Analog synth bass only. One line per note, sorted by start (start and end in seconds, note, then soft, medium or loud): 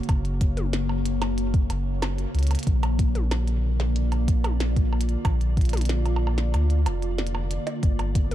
0.09 1.69 F#1 loud
1.70 2.26 F#1 medium
2.35 2.56 C#2 medium
2.67 5.16 A#1 loud
5.25 6.53 A#1 loud
6.54 6.88 D2 medium
6.86 7.58 F1 medium
7.83 8.35 G1 medium